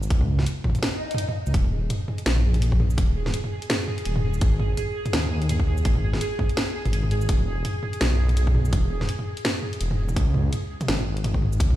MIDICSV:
0, 0, Header, 1, 5, 480
1, 0, Start_track
1, 0, Tempo, 359281
1, 140, Time_signature, 4, 2, 24, 8
1, 15715, End_track
2, 0, Start_track
2, 0, Title_t, "Synth texture"
2, 0, Program_c, 0, 99
2, 2062, Note_on_c, 0, 68, 91
2, 15715, Note_off_c, 0, 68, 0
2, 15715, End_track
3, 0, Start_track
3, 0, Title_t, "Detuned saw bass"
3, 0, Program_c, 1, 39
3, 139, Note_on_c, 1, 37, 95
3, 607, Note_off_c, 1, 37, 0
3, 1959, Note_on_c, 1, 37, 81
3, 2053, Note_off_c, 1, 37, 0
3, 2059, Note_on_c, 1, 27, 95
3, 2527, Note_off_c, 1, 27, 0
3, 3019, Note_on_c, 1, 34, 81
3, 3967, Note_off_c, 1, 34, 0
3, 3979, Note_on_c, 1, 27, 98
3, 4446, Note_off_c, 1, 27, 0
3, 5421, Note_on_c, 1, 27, 86
3, 5887, Note_off_c, 1, 27, 0
3, 5899, Note_on_c, 1, 32, 93
3, 6367, Note_off_c, 1, 32, 0
3, 6860, Note_on_c, 1, 39, 78
3, 7807, Note_off_c, 1, 39, 0
3, 7820, Note_on_c, 1, 32, 98
3, 8287, Note_off_c, 1, 32, 0
3, 9159, Note_on_c, 1, 32, 86
3, 9728, Note_off_c, 1, 32, 0
3, 9739, Note_on_c, 1, 28, 100
3, 10207, Note_off_c, 1, 28, 0
3, 10703, Note_on_c, 1, 35, 81
3, 11649, Note_off_c, 1, 35, 0
3, 11660, Note_on_c, 1, 28, 96
3, 12127, Note_off_c, 1, 28, 0
3, 13101, Note_on_c, 1, 28, 86
3, 13568, Note_off_c, 1, 28, 0
3, 13580, Note_on_c, 1, 37, 94
3, 14047, Note_off_c, 1, 37, 0
3, 14543, Note_on_c, 1, 32, 85
3, 15488, Note_off_c, 1, 32, 0
3, 15499, Note_on_c, 1, 37, 98
3, 15715, Note_off_c, 1, 37, 0
3, 15715, End_track
4, 0, Start_track
4, 0, Title_t, "Swell"
4, 0, Program_c, 2, 103
4, 1100, Note_on_c, 2, 60, 61
4, 2060, Note_off_c, 2, 60, 0
4, 15715, End_track
5, 0, Start_track
5, 0, Title_t, "Drums"
5, 38, Note_on_c, 9, 82, 70
5, 139, Note_on_c, 9, 36, 116
5, 140, Note_on_c, 9, 42, 79
5, 171, Note_off_c, 9, 82, 0
5, 273, Note_off_c, 9, 36, 0
5, 273, Note_off_c, 9, 42, 0
5, 277, Note_on_c, 9, 45, 85
5, 411, Note_off_c, 9, 45, 0
5, 518, Note_on_c, 9, 38, 34
5, 518, Note_on_c, 9, 45, 53
5, 621, Note_on_c, 9, 42, 69
5, 652, Note_off_c, 9, 38, 0
5, 652, Note_off_c, 9, 45, 0
5, 754, Note_off_c, 9, 42, 0
5, 859, Note_on_c, 9, 36, 58
5, 861, Note_on_c, 9, 45, 85
5, 931, Note_off_c, 9, 45, 0
5, 931, Note_on_c, 9, 45, 68
5, 993, Note_off_c, 9, 36, 0
5, 1000, Note_off_c, 9, 45, 0
5, 1000, Note_on_c, 9, 42, 36
5, 1000, Note_on_c, 9, 45, 53
5, 1000, Note_on_c, 9, 82, 38
5, 1052, Note_off_c, 9, 45, 0
5, 1052, Note_on_c, 9, 45, 44
5, 1103, Note_off_c, 9, 42, 0
5, 1103, Note_off_c, 9, 45, 0
5, 1103, Note_on_c, 9, 38, 115
5, 1103, Note_on_c, 9, 42, 81
5, 1103, Note_on_c, 9, 45, 56
5, 1134, Note_off_c, 9, 82, 0
5, 1237, Note_off_c, 9, 38, 0
5, 1237, Note_off_c, 9, 42, 0
5, 1237, Note_off_c, 9, 45, 0
5, 1481, Note_on_c, 9, 42, 37
5, 1531, Note_on_c, 9, 45, 84
5, 1580, Note_off_c, 9, 42, 0
5, 1580, Note_on_c, 9, 42, 66
5, 1664, Note_off_c, 9, 45, 0
5, 1713, Note_off_c, 9, 42, 0
5, 1718, Note_on_c, 9, 45, 57
5, 1851, Note_off_c, 9, 45, 0
5, 1957, Note_on_c, 9, 82, 69
5, 2059, Note_on_c, 9, 36, 115
5, 2059, Note_on_c, 9, 42, 79
5, 2091, Note_off_c, 9, 82, 0
5, 2193, Note_off_c, 9, 36, 0
5, 2193, Note_off_c, 9, 42, 0
5, 2196, Note_on_c, 9, 45, 54
5, 2330, Note_off_c, 9, 45, 0
5, 2539, Note_on_c, 9, 42, 68
5, 2539, Note_on_c, 9, 45, 83
5, 2673, Note_off_c, 9, 42, 0
5, 2673, Note_off_c, 9, 45, 0
5, 2781, Note_on_c, 9, 45, 57
5, 2914, Note_off_c, 9, 45, 0
5, 2916, Note_on_c, 9, 42, 39
5, 2916, Note_on_c, 9, 82, 36
5, 3020, Note_off_c, 9, 42, 0
5, 3020, Note_on_c, 9, 38, 120
5, 3020, Note_on_c, 9, 42, 84
5, 3050, Note_off_c, 9, 82, 0
5, 3154, Note_off_c, 9, 38, 0
5, 3154, Note_off_c, 9, 42, 0
5, 3158, Note_on_c, 9, 45, 87
5, 3292, Note_off_c, 9, 45, 0
5, 3397, Note_on_c, 9, 42, 40
5, 3397, Note_on_c, 9, 45, 56
5, 3500, Note_off_c, 9, 42, 0
5, 3500, Note_on_c, 9, 42, 69
5, 3531, Note_off_c, 9, 45, 0
5, 3634, Note_off_c, 9, 42, 0
5, 3636, Note_on_c, 9, 36, 62
5, 3739, Note_on_c, 9, 45, 82
5, 3770, Note_off_c, 9, 36, 0
5, 3873, Note_off_c, 9, 45, 0
5, 3877, Note_on_c, 9, 82, 64
5, 3978, Note_on_c, 9, 36, 117
5, 3980, Note_on_c, 9, 42, 86
5, 3980, Note_on_c, 9, 45, 55
5, 4011, Note_off_c, 9, 82, 0
5, 4112, Note_off_c, 9, 36, 0
5, 4113, Note_off_c, 9, 42, 0
5, 4113, Note_off_c, 9, 45, 0
5, 4357, Note_on_c, 9, 38, 37
5, 4357, Note_on_c, 9, 45, 73
5, 4459, Note_on_c, 9, 42, 70
5, 4490, Note_off_c, 9, 38, 0
5, 4490, Note_off_c, 9, 45, 0
5, 4592, Note_off_c, 9, 42, 0
5, 4597, Note_on_c, 9, 45, 55
5, 4731, Note_off_c, 9, 45, 0
5, 4838, Note_on_c, 9, 42, 40
5, 4941, Note_off_c, 9, 42, 0
5, 4941, Note_on_c, 9, 38, 127
5, 4941, Note_on_c, 9, 42, 84
5, 4941, Note_on_c, 9, 45, 86
5, 5074, Note_off_c, 9, 38, 0
5, 5074, Note_off_c, 9, 42, 0
5, 5074, Note_off_c, 9, 45, 0
5, 5180, Note_on_c, 9, 45, 57
5, 5314, Note_off_c, 9, 45, 0
5, 5316, Note_on_c, 9, 42, 40
5, 5417, Note_off_c, 9, 42, 0
5, 5417, Note_on_c, 9, 42, 69
5, 5550, Note_off_c, 9, 42, 0
5, 5554, Note_on_c, 9, 45, 85
5, 5688, Note_off_c, 9, 45, 0
5, 5795, Note_on_c, 9, 82, 61
5, 5897, Note_on_c, 9, 42, 83
5, 5898, Note_on_c, 9, 36, 121
5, 5928, Note_off_c, 9, 82, 0
5, 6030, Note_off_c, 9, 42, 0
5, 6032, Note_off_c, 9, 36, 0
5, 6139, Note_on_c, 9, 45, 80
5, 6272, Note_off_c, 9, 45, 0
5, 6378, Note_on_c, 9, 42, 68
5, 6378, Note_on_c, 9, 45, 54
5, 6512, Note_off_c, 9, 42, 0
5, 6512, Note_off_c, 9, 45, 0
5, 6756, Note_on_c, 9, 42, 39
5, 6756, Note_on_c, 9, 45, 73
5, 6756, Note_on_c, 9, 82, 34
5, 6858, Note_off_c, 9, 42, 0
5, 6858, Note_on_c, 9, 38, 127
5, 6858, Note_on_c, 9, 42, 82
5, 6889, Note_off_c, 9, 45, 0
5, 6889, Note_off_c, 9, 82, 0
5, 6991, Note_off_c, 9, 38, 0
5, 6991, Note_off_c, 9, 42, 0
5, 6996, Note_on_c, 9, 45, 54
5, 7130, Note_off_c, 9, 45, 0
5, 7237, Note_on_c, 9, 42, 38
5, 7339, Note_off_c, 9, 42, 0
5, 7339, Note_on_c, 9, 42, 72
5, 7339, Note_on_c, 9, 45, 80
5, 7473, Note_off_c, 9, 42, 0
5, 7473, Note_off_c, 9, 45, 0
5, 7476, Note_on_c, 9, 36, 66
5, 7578, Note_on_c, 9, 45, 55
5, 7610, Note_off_c, 9, 36, 0
5, 7712, Note_off_c, 9, 45, 0
5, 7715, Note_on_c, 9, 82, 64
5, 7817, Note_on_c, 9, 42, 78
5, 7818, Note_on_c, 9, 36, 116
5, 7849, Note_off_c, 9, 82, 0
5, 7951, Note_off_c, 9, 42, 0
5, 7952, Note_off_c, 9, 36, 0
5, 7953, Note_on_c, 9, 45, 75
5, 8086, Note_off_c, 9, 45, 0
5, 8196, Note_on_c, 9, 38, 36
5, 8196, Note_on_c, 9, 45, 47
5, 8297, Note_on_c, 9, 42, 69
5, 8329, Note_off_c, 9, 38, 0
5, 8329, Note_off_c, 9, 45, 0
5, 8431, Note_off_c, 9, 42, 0
5, 8537, Note_on_c, 9, 45, 81
5, 8539, Note_on_c, 9, 36, 65
5, 8671, Note_off_c, 9, 45, 0
5, 8672, Note_off_c, 9, 36, 0
5, 8677, Note_on_c, 9, 42, 35
5, 8779, Note_off_c, 9, 42, 0
5, 8779, Note_on_c, 9, 38, 127
5, 8779, Note_on_c, 9, 42, 79
5, 8779, Note_on_c, 9, 45, 53
5, 8912, Note_off_c, 9, 38, 0
5, 8912, Note_off_c, 9, 42, 0
5, 8912, Note_off_c, 9, 45, 0
5, 9158, Note_on_c, 9, 42, 37
5, 9158, Note_on_c, 9, 45, 77
5, 9259, Note_off_c, 9, 42, 0
5, 9259, Note_on_c, 9, 42, 67
5, 9292, Note_off_c, 9, 45, 0
5, 9393, Note_off_c, 9, 42, 0
5, 9396, Note_on_c, 9, 45, 50
5, 9500, Note_on_c, 9, 42, 39
5, 9530, Note_off_c, 9, 45, 0
5, 9634, Note_off_c, 9, 42, 0
5, 9637, Note_on_c, 9, 82, 60
5, 9738, Note_on_c, 9, 42, 77
5, 9739, Note_on_c, 9, 36, 118
5, 9770, Note_off_c, 9, 82, 0
5, 9872, Note_off_c, 9, 36, 0
5, 9872, Note_off_c, 9, 42, 0
5, 9876, Note_on_c, 9, 45, 52
5, 10010, Note_off_c, 9, 45, 0
5, 10218, Note_on_c, 9, 42, 61
5, 10218, Note_on_c, 9, 45, 75
5, 10352, Note_off_c, 9, 42, 0
5, 10352, Note_off_c, 9, 45, 0
5, 10458, Note_on_c, 9, 45, 52
5, 10592, Note_off_c, 9, 45, 0
5, 10597, Note_on_c, 9, 42, 36
5, 10597, Note_on_c, 9, 82, 37
5, 10700, Note_off_c, 9, 42, 0
5, 10700, Note_on_c, 9, 38, 117
5, 10700, Note_on_c, 9, 42, 77
5, 10730, Note_off_c, 9, 82, 0
5, 10833, Note_off_c, 9, 38, 0
5, 10833, Note_off_c, 9, 42, 0
5, 10838, Note_on_c, 9, 45, 73
5, 10972, Note_off_c, 9, 45, 0
5, 11078, Note_on_c, 9, 42, 35
5, 11078, Note_on_c, 9, 45, 53
5, 11181, Note_off_c, 9, 42, 0
5, 11181, Note_on_c, 9, 42, 67
5, 11212, Note_off_c, 9, 45, 0
5, 11314, Note_off_c, 9, 42, 0
5, 11317, Note_on_c, 9, 36, 65
5, 11420, Note_on_c, 9, 45, 77
5, 11451, Note_off_c, 9, 36, 0
5, 11553, Note_off_c, 9, 45, 0
5, 11558, Note_on_c, 9, 82, 67
5, 11659, Note_on_c, 9, 36, 119
5, 11659, Note_on_c, 9, 42, 74
5, 11659, Note_on_c, 9, 45, 52
5, 11691, Note_off_c, 9, 82, 0
5, 11792, Note_off_c, 9, 36, 0
5, 11793, Note_off_c, 9, 42, 0
5, 11793, Note_off_c, 9, 45, 0
5, 12039, Note_on_c, 9, 38, 32
5, 12039, Note_on_c, 9, 45, 77
5, 12141, Note_on_c, 9, 42, 62
5, 12173, Note_off_c, 9, 38, 0
5, 12173, Note_off_c, 9, 45, 0
5, 12275, Note_off_c, 9, 42, 0
5, 12278, Note_on_c, 9, 45, 51
5, 12411, Note_off_c, 9, 45, 0
5, 12519, Note_on_c, 9, 42, 35
5, 12623, Note_off_c, 9, 42, 0
5, 12623, Note_on_c, 9, 38, 124
5, 12623, Note_on_c, 9, 42, 77
5, 12623, Note_on_c, 9, 45, 77
5, 12757, Note_off_c, 9, 38, 0
5, 12757, Note_off_c, 9, 42, 0
5, 12757, Note_off_c, 9, 45, 0
5, 12861, Note_on_c, 9, 45, 53
5, 12995, Note_off_c, 9, 45, 0
5, 12998, Note_on_c, 9, 42, 37
5, 13101, Note_off_c, 9, 42, 0
5, 13101, Note_on_c, 9, 42, 65
5, 13234, Note_off_c, 9, 42, 0
5, 13240, Note_on_c, 9, 45, 82
5, 13374, Note_off_c, 9, 45, 0
5, 13477, Note_on_c, 9, 45, 51
5, 13477, Note_on_c, 9, 82, 70
5, 13579, Note_on_c, 9, 36, 115
5, 13581, Note_on_c, 9, 42, 83
5, 13610, Note_off_c, 9, 45, 0
5, 13610, Note_off_c, 9, 82, 0
5, 13713, Note_off_c, 9, 36, 0
5, 13714, Note_off_c, 9, 42, 0
5, 13819, Note_on_c, 9, 45, 81
5, 13953, Note_off_c, 9, 45, 0
5, 14063, Note_on_c, 9, 42, 64
5, 14063, Note_on_c, 9, 45, 52
5, 14196, Note_off_c, 9, 42, 0
5, 14196, Note_off_c, 9, 45, 0
5, 14440, Note_on_c, 9, 42, 37
5, 14440, Note_on_c, 9, 45, 78
5, 14440, Note_on_c, 9, 82, 37
5, 14541, Note_off_c, 9, 42, 0
5, 14541, Note_on_c, 9, 38, 118
5, 14541, Note_on_c, 9, 42, 76
5, 14573, Note_off_c, 9, 45, 0
5, 14573, Note_off_c, 9, 82, 0
5, 14675, Note_off_c, 9, 38, 0
5, 14675, Note_off_c, 9, 42, 0
5, 14679, Note_on_c, 9, 45, 55
5, 14813, Note_off_c, 9, 45, 0
5, 14920, Note_on_c, 9, 42, 37
5, 15021, Note_off_c, 9, 42, 0
5, 15021, Note_on_c, 9, 42, 65
5, 15021, Note_on_c, 9, 45, 89
5, 15155, Note_off_c, 9, 42, 0
5, 15155, Note_off_c, 9, 45, 0
5, 15156, Note_on_c, 9, 36, 61
5, 15261, Note_on_c, 9, 45, 57
5, 15290, Note_off_c, 9, 36, 0
5, 15394, Note_off_c, 9, 45, 0
5, 15398, Note_on_c, 9, 82, 67
5, 15498, Note_on_c, 9, 36, 114
5, 15502, Note_on_c, 9, 42, 81
5, 15532, Note_off_c, 9, 82, 0
5, 15632, Note_off_c, 9, 36, 0
5, 15635, Note_off_c, 9, 42, 0
5, 15637, Note_on_c, 9, 45, 81
5, 15715, Note_off_c, 9, 45, 0
5, 15715, End_track
0, 0, End_of_file